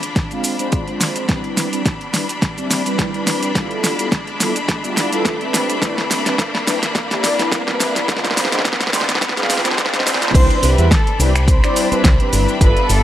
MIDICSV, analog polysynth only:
0, 0, Header, 1, 2, 480
1, 0, Start_track
1, 0, Key_signature, 0, "major"
1, 0, Tempo, 566038
1, 1096, Time_signature, 4, 2, 24, 8
1, 11051, End_track
2, 0, Start_track
2, 0, Title_t, "Analog polysynth"
2, 0, Program_c, 0, 90
2, 262, Note_on_c, 0, 56, 95
2, 265, Note_on_c, 0, 60, 84
2, 265, Note_on_c, 0, 62, 83
2, 269, Note_on_c, 0, 65, 82
2, 271, Note_on_c, 0, 77, 100
2, 473, Note_off_c, 0, 56, 0
2, 474, Note_off_c, 0, 60, 0
2, 475, Note_off_c, 0, 62, 0
2, 477, Note_off_c, 0, 65, 0
2, 478, Note_off_c, 0, 77, 0
2, 497, Note_on_c, 0, 56, 94
2, 500, Note_on_c, 0, 60, 87
2, 500, Note_on_c, 0, 62, 84
2, 504, Note_on_c, 0, 65, 86
2, 506, Note_on_c, 0, 72, 102
2, 711, Note_off_c, 0, 56, 0
2, 712, Note_off_c, 0, 60, 0
2, 712, Note_off_c, 0, 62, 0
2, 714, Note_off_c, 0, 65, 0
2, 715, Note_off_c, 0, 72, 0
2, 734, Note_on_c, 0, 56, 83
2, 737, Note_on_c, 0, 60, 74
2, 739, Note_on_c, 0, 62, 78
2, 744, Note_on_c, 0, 65, 75
2, 744, Note_on_c, 0, 72, 93
2, 1064, Note_off_c, 0, 56, 0
2, 1065, Note_off_c, 0, 60, 0
2, 1066, Note_off_c, 0, 62, 0
2, 1068, Note_off_c, 0, 65, 0
2, 1069, Note_off_c, 0, 72, 0
2, 1086, Note_on_c, 0, 55, 86
2, 1090, Note_on_c, 0, 60, 77
2, 1091, Note_on_c, 0, 62, 77
2, 1430, Note_off_c, 0, 55, 0
2, 1433, Note_off_c, 0, 60, 0
2, 1433, Note_off_c, 0, 62, 0
2, 1455, Note_on_c, 0, 55, 83
2, 1458, Note_on_c, 0, 60, 77
2, 1458, Note_on_c, 0, 62, 77
2, 1462, Note_on_c, 0, 64, 77
2, 1464, Note_on_c, 0, 71, 92
2, 1540, Note_off_c, 0, 55, 0
2, 1541, Note_off_c, 0, 60, 0
2, 1541, Note_off_c, 0, 62, 0
2, 1543, Note_off_c, 0, 64, 0
2, 1544, Note_off_c, 0, 71, 0
2, 1806, Note_on_c, 0, 55, 83
2, 1809, Note_on_c, 0, 60, 77
2, 1810, Note_on_c, 0, 62, 74
2, 1812, Note_on_c, 0, 64, 77
2, 1815, Note_on_c, 0, 71, 91
2, 1905, Note_off_c, 0, 55, 0
2, 1907, Note_off_c, 0, 60, 0
2, 1907, Note_off_c, 0, 62, 0
2, 1908, Note_off_c, 0, 64, 0
2, 1910, Note_off_c, 0, 71, 0
2, 2177, Note_on_c, 0, 55, 90
2, 2179, Note_on_c, 0, 60, 83
2, 2183, Note_on_c, 0, 62, 83
2, 2184, Note_on_c, 0, 64, 82
2, 2186, Note_on_c, 0, 74, 103
2, 2391, Note_off_c, 0, 55, 0
2, 2392, Note_off_c, 0, 60, 0
2, 2393, Note_off_c, 0, 62, 0
2, 2394, Note_off_c, 0, 64, 0
2, 2395, Note_off_c, 0, 74, 0
2, 2420, Note_on_c, 0, 55, 95
2, 2421, Note_on_c, 0, 60, 86
2, 2422, Note_on_c, 0, 62, 85
2, 2425, Note_on_c, 0, 64, 85
2, 2427, Note_on_c, 0, 71, 104
2, 2632, Note_off_c, 0, 55, 0
2, 2633, Note_off_c, 0, 60, 0
2, 2633, Note_off_c, 0, 62, 0
2, 2635, Note_off_c, 0, 64, 0
2, 2636, Note_off_c, 0, 71, 0
2, 2659, Note_on_c, 0, 55, 84
2, 2660, Note_on_c, 0, 60, 78
2, 2664, Note_on_c, 0, 62, 76
2, 2664, Note_on_c, 0, 64, 79
2, 2667, Note_on_c, 0, 71, 94
2, 2986, Note_off_c, 0, 55, 0
2, 2987, Note_off_c, 0, 60, 0
2, 2989, Note_off_c, 0, 62, 0
2, 2989, Note_off_c, 0, 64, 0
2, 2990, Note_off_c, 0, 71, 0
2, 3011, Note_on_c, 0, 55, 88
2, 3012, Note_on_c, 0, 59, 76
2, 3014, Note_on_c, 0, 64, 76
2, 3017, Note_on_c, 0, 65, 80
2, 3019, Note_on_c, 0, 69, 93
2, 3353, Note_off_c, 0, 55, 0
2, 3354, Note_off_c, 0, 59, 0
2, 3355, Note_off_c, 0, 64, 0
2, 3356, Note_off_c, 0, 65, 0
2, 3357, Note_off_c, 0, 69, 0
2, 3377, Note_on_c, 0, 55, 84
2, 3378, Note_on_c, 0, 59, 76
2, 3383, Note_on_c, 0, 64, 76
2, 3384, Note_on_c, 0, 65, 78
2, 3385, Note_on_c, 0, 69, 94
2, 3460, Note_off_c, 0, 55, 0
2, 3461, Note_off_c, 0, 59, 0
2, 3463, Note_off_c, 0, 64, 0
2, 3464, Note_off_c, 0, 65, 0
2, 3465, Note_off_c, 0, 69, 0
2, 3729, Note_on_c, 0, 55, 85
2, 3731, Note_on_c, 0, 59, 80
2, 3733, Note_on_c, 0, 64, 76
2, 3735, Note_on_c, 0, 65, 75
2, 3738, Note_on_c, 0, 69, 93
2, 3827, Note_off_c, 0, 55, 0
2, 3828, Note_off_c, 0, 59, 0
2, 3829, Note_off_c, 0, 64, 0
2, 3830, Note_off_c, 0, 65, 0
2, 3831, Note_off_c, 0, 69, 0
2, 4098, Note_on_c, 0, 55, 91
2, 4101, Note_on_c, 0, 59, 86
2, 4102, Note_on_c, 0, 64, 84
2, 4104, Note_on_c, 0, 65, 87
2, 4107, Note_on_c, 0, 74, 102
2, 4311, Note_off_c, 0, 55, 0
2, 4313, Note_off_c, 0, 59, 0
2, 4313, Note_off_c, 0, 64, 0
2, 4314, Note_off_c, 0, 65, 0
2, 4316, Note_off_c, 0, 74, 0
2, 4338, Note_on_c, 0, 55, 93
2, 4341, Note_on_c, 0, 59, 84
2, 4343, Note_on_c, 0, 64, 90
2, 4345, Note_on_c, 0, 65, 86
2, 4348, Note_on_c, 0, 69, 108
2, 4551, Note_off_c, 0, 55, 0
2, 4553, Note_off_c, 0, 59, 0
2, 4553, Note_off_c, 0, 64, 0
2, 4555, Note_off_c, 0, 65, 0
2, 4556, Note_off_c, 0, 69, 0
2, 4580, Note_on_c, 0, 55, 83
2, 4584, Note_on_c, 0, 60, 77
2, 4587, Note_on_c, 0, 62, 77
2, 4588, Note_on_c, 0, 64, 78
2, 4589, Note_on_c, 0, 71, 96
2, 4906, Note_off_c, 0, 55, 0
2, 4908, Note_off_c, 0, 60, 0
2, 4910, Note_off_c, 0, 62, 0
2, 4910, Note_off_c, 0, 64, 0
2, 4911, Note_off_c, 0, 71, 0
2, 4929, Note_on_c, 0, 55, 87
2, 4930, Note_on_c, 0, 60, 80
2, 4933, Note_on_c, 0, 62, 79
2, 4934, Note_on_c, 0, 64, 77
2, 4937, Note_on_c, 0, 71, 96
2, 5272, Note_off_c, 0, 55, 0
2, 5273, Note_off_c, 0, 60, 0
2, 5274, Note_off_c, 0, 62, 0
2, 5275, Note_off_c, 0, 64, 0
2, 5276, Note_off_c, 0, 71, 0
2, 5299, Note_on_c, 0, 55, 84
2, 5301, Note_on_c, 0, 60, 76
2, 5303, Note_on_c, 0, 62, 80
2, 5306, Note_on_c, 0, 64, 77
2, 5308, Note_on_c, 0, 71, 96
2, 5381, Note_off_c, 0, 55, 0
2, 5382, Note_off_c, 0, 60, 0
2, 5384, Note_off_c, 0, 62, 0
2, 5385, Note_off_c, 0, 64, 0
2, 5386, Note_off_c, 0, 71, 0
2, 5650, Note_on_c, 0, 55, 88
2, 5651, Note_on_c, 0, 60, 77
2, 5654, Note_on_c, 0, 62, 81
2, 5654, Note_on_c, 0, 64, 77
2, 5658, Note_on_c, 0, 71, 94
2, 5747, Note_off_c, 0, 55, 0
2, 5748, Note_off_c, 0, 60, 0
2, 5749, Note_off_c, 0, 62, 0
2, 5749, Note_off_c, 0, 64, 0
2, 5751, Note_off_c, 0, 71, 0
2, 6020, Note_on_c, 0, 55, 94
2, 6023, Note_on_c, 0, 60, 89
2, 6025, Note_on_c, 0, 62, 84
2, 6026, Note_on_c, 0, 64, 87
2, 6029, Note_on_c, 0, 74, 103
2, 6232, Note_off_c, 0, 55, 0
2, 6234, Note_off_c, 0, 60, 0
2, 6234, Note_off_c, 0, 62, 0
2, 6235, Note_off_c, 0, 64, 0
2, 6237, Note_off_c, 0, 74, 0
2, 6258, Note_on_c, 0, 55, 93
2, 6261, Note_on_c, 0, 60, 87
2, 6263, Note_on_c, 0, 62, 87
2, 6266, Note_on_c, 0, 64, 88
2, 6266, Note_on_c, 0, 71, 106
2, 6471, Note_off_c, 0, 55, 0
2, 6473, Note_off_c, 0, 60, 0
2, 6474, Note_off_c, 0, 62, 0
2, 6475, Note_off_c, 0, 64, 0
2, 6475, Note_off_c, 0, 71, 0
2, 6499, Note_on_c, 0, 55, 85
2, 6502, Note_on_c, 0, 60, 77
2, 6502, Note_on_c, 0, 62, 77
2, 6505, Note_on_c, 0, 64, 77
2, 6508, Note_on_c, 0, 71, 95
2, 6826, Note_off_c, 0, 55, 0
2, 6827, Note_off_c, 0, 60, 0
2, 6828, Note_off_c, 0, 62, 0
2, 6829, Note_off_c, 0, 64, 0
2, 6831, Note_off_c, 0, 71, 0
2, 6850, Note_on_c, 0, 60, 78
2, 6851, Note_on_c, 0, 56, 88
2, 6855, Note_on_c, 0, 62, 81
2, 6856, Note_on_c, 0, 65, 80
2, 6859, Note_on_c, 0, 72, 99
2, 7192, Note_off_c, 0, 60, 0
2, 7193, Note_off_c, 0, 56, 0
2, 7195, Note_off_c, 0, 62, 0
2, 7196, Note_off_c, 0, 65, 0
2, 7197, Note_off_c, 0, 72, 0
2, 7220, Note_on_c, 0, 56, 87
2, 7223, Note_on_c, 0, 60, 79
2, 7225, Note_on_c, 0, 62, 78
2, 7227, Note_on_c, 0, 65, 77
2, 7228, Note_on_c, 0, 72, 93
2, 7302, Note_off_c, 0, 56, 0
2, 7303, Note_off_c, 0, 60, 0
2, 7305, Note_off_c, 0, 62, 0
2, 7305, Note_off_c, 0, 65, 0
2, 7306, Note_off_c, 0, 72, 0
2, 7566, Note_on_c, 0, 56, 87
2, 7566, Note_on_c, 0, 60, 78
2, 7568, Note_on_c, 0, 62, 78
2, 7572, Note_on_c, 0, 65, 78
2, 7573, Note_on_c, 0, 72, 97
2, 7665, Note_off_c, 0, 56, 0
2, 7665, Note_off_c, 0, 60, 0
2, 7666, Note_off_c, 0, 62, 0
2, 7668, Note_off_c, 0, 65, 0
2, 7668, Note_off_c, 0, 72, 0
2, 7940, Note_on_c, 0, 56, 95
2, 7940, Note_on_c, 0, 60, 86
2, 7943, Note_on_c, 0, 62, 88
2, 7944, Note_on_c, 0, 65, 85
2, 7947, Note_on_c, 0, 77, 102
2, 8152, Note_off_c, 0, 56, 0
2, 8152, Note_off_c, 0, 60, 0
2, 8154, Note_off_c, 0, 62, 0
2, 8154, Note_off_c, 0, 65, 0
2, 8156, Note_off_c, 0, 77, 0
2, 8178, Note_on_c, 0, 56, 95
2, 8181, Note_on_c, 0, 60, 90
2, 8183, Note_on_c, 0, 62, 90
2, 8184, Note_on_c, 0, 65, 88
2, 8188, Note_on_c, 0, 72, 109
2, 8391, Note_off_c, 0, 56, 0
2, 8393, Note_off_c, 0, 60, 0
2, 8394, Note_off_c, 0, 62, 0
2, 8394, Note_off_c, 0, 65, 0
2, 8396, Note_off_c, 0, 72, 0
2, 8419, Note_on_c, 0, 56, 84
2, 8422, Note_on_c, 0, 60, 79
2, 8423, Note_on_c, 0, 62, 80
2, 8425, Note_on_c, 0, 65, 78
2, 8428, Note_on_c, 0, 72, 94
2, 8746, Note_off_c, 0, 56, 0
2, 8748, Note_off_c, 0, 60, 0
2, 8748, Note_off_c, 0, 62, 0
2, 8749, Note_off_c, 0, 65, 0
2, 8751, Note_off_c, 0, 72, 0
2, 8770, Note_on_c, 0, 55, 87
2, 8772, Note_on_c, 0, 60, 76
2, 8773, Note_on_c, 0, 62, 79
2, 8774, Note_on_c, 0, 64, 78
2, 8777, Note_on_c, 0, 71, 92
2, 9113, Note_off_c, 0, 55, 0
2, 9114, Note_off_c, 0, 60, 0
2, 9114, Note_off_c, 0, 62, 0
2, 9114, Note_off_c, 0, 64, 0
2, 9116, Note_off_c, 0, 71, 0
2, 9137, Note_on_c, 0, 55, 86
2, 9141, Note_on_c, 0, 60, 78
2, 9143, Note_on_c, 0, 62, 78
2, 9143, Note_on_c, 0, 64, 77
2, 9147, Note_on_c, 0, 71, 98
2, 9221, Note_off_c, 0, 55, 0
2, 9222, Note_off_c, 0, 60, 0
2, 9224, Note_off_c, 0, 62, 0
2, 9224, Note_off_c, 0, 64, 0
2, 9225, Note_off_c, 0, 71, 0
2, 9489, Note_on_c, 0, 55, 88
2, 9491, Note_on_c, 0, 60, 78
2, 9492, Note_on_c, 0, 62, 80
2, 9496, Note_on_c, 0, 64, 78
2, 9497, Note_on_c, 0, 71, 94
2, 9586, Note_off_c, 0, 55, 0
2, 9588, Note_off_c, 0, 60, 0
2, 9588, Note_off_c, 0, 62, 0
2, 9590, Note_off_c, 0, 64, 0
2, 9591, Note_off_c, 0, 71, 0
2, 9862, Note_on_c, 0, 55, 93
2, 9863, Note_on_c, 0, 60, 87
2, 9865, Note_on_c, 0, 62, 86
2, 9867, Note_on_c, 0, 64, 85
2, 9868, Note_on_c, 0, 74, 107
2, 10073, Note_off_c, 0, 55, 0
2, 10074, Note_off_c, 0, 60, 0
2, 10074, Note_off_c, 0, 62, 0
2, 10076, Note_off_c, 0, 64, 0
2, 10076, Note_off_c, 0, 74, 0
2, 10099, Note_on_c, 0, 55, 87
2, 10103, Note_on_c, 0, 60, 82
2, 10104, Note_on_c, 0, 62, 83
2, 10107, Note_on_c, 0, 64, 83
2, 10108, Note_on_c, 0, 71, 102
2, 10232, Note_off_c, 0, 55, 0
2, 10234, Note_off_c, 0, 60, 0
2, 10234, Note_off_c, 0, 62, 0
2, 10236, Note_off_c, 0, 64, 0
2, 10236, Note_off_c, 0, 71, 0
2, 10340, Note_on_c, 0, 55, 77
2, 10343, Note_on_c, 0, 60, 70
2, 10344, Note_on_c, 0, 62, 70
2, 10347, Note_on_c, 0, 64, 68
2, 10348, Note_on_c, 0, 71, 86
2, 10666, Note_off_c, 0, 55, 0
2, 10668, Note_off_c, 0, 60, 0
2, 10669, Note_off_c, 0, 62, 0
2, 10670, Note_off_c, 0, 64, 0
2, 10671, Note_off_c, 0, 71, 0
2, 10686, Note_on_c, 0, 55, 89
2, 10688, Note_on_c, 0, 59, 79
2, 10690, Note_on_c, 0, 64, 80
2, 10691, Note_on_c, 0, 65, 79
2, 10695, Note_on_c, 0, 69, 97
2, 11031, Note_off_c, 0, 55, 0
2, 11031, Note_off_c, 0, 59, 0
2, 11033, Note_off_c, 0, 64, 0
2, 11033, Note_off_c, 0, 65, 0
2, 11035, Note_off_c, 0, 69, 0
2, 11051, End_track
0, 0, End_of_file